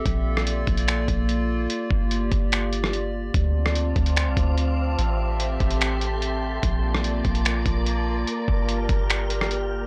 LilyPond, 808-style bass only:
\new Staff \with { instrumentName = "808-style bass" } { \clef bass \time 4/4 \key bes \lydian \tempo 4 = 146 bes,,4. bes,,4 bes,,4. | r8 g,,4 g,,2~ g,,8 | d,4. d,8. c,16 d,4. | a,,4. a,,2~ a,,8 |
bes,,4. bes,,4 bes,,4. | r8 g,,4 g,,2~ g,,8 | }